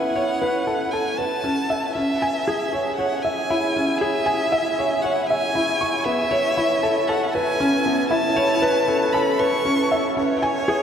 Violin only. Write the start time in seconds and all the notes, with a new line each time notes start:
Already playing: F#5
0.91 G#5
1.17 A5
1.93 E5
2.97 F#5
3.22 G#5
3.98 E5
5.02 F#5
5.27 G#5
6.04 E5
7.08 F#5
7.34 G#5
8.10 A5
9.13 B5
9.40 C#6
10.17 C#5